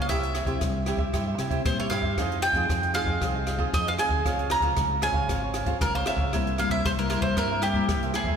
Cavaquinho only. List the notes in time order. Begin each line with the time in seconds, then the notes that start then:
0.08 E4 G4 C5 E5
0.34 E4 G4 C5 E5
0.46 E4 G4 C5 E5
0.86 E4 G4 C5 E5
0.98 G4 C5 E5
1.13 E4 G4 C5 E5
1.27 G4 C5 E5
1.38 E4 G4 C5 E5
1.50 E4 G4 C5 E5
1.79 G4 C5 E5
1.91 E4 G4 C5 E5
2.03 G4 C5 E5
2.18 F4 G#4 C5 D#5
2.43 F4 G#4 C5 D#5
2.56 F4 G#4 C5 D#5
2.95 F4 G#4 C5 D#5
3.07 G#4 C5 D#5
3.22 F4 G#4 C5 D#5
3.35 G#4 C5 D#5
3.46 F4 G#4 C5 D#5
3.58 F4 G#4 C5 D#5
3.87 G#4 C5 D#5
3.98 F4 G#4 C5 D#5
4.10 G#4 C5 D#5
4.25 F4 C5 C#5 F5
4.50 F4 C5 C#5 F5
4.63 F4 C5 C#5 F5
5.02 F4 C5 C#5 F5
5.14 C5 C#5 F5
5.28 F4 C5 C#5 F5
5.43 C5 C#5 F5
5.54 F4 C5 C#5 F5
5.66 F4 C5 C#5 F5
5.95 C5 C#5 F5
6.07 F4 C5 C#5 F5
6.19 C5 C#5 F5
6.33 E4 A#4 C5 E5
6.58 E4 A#4 C5 E5
6.71 E4 A#4 C5 E5
7.10 E4 A#4 C5 E5
7.23 A#4 C5 E5
7.37 E4 A#4 C5 E5
7.51 A#4 C5 E5
7.63 E4 A#4 C5 E5
7.75 E4 A#4 C5 E5
8.03 A#4 C5 E5
8.14 E4 A#4 C5 E5
8.27 A#4 C5 E5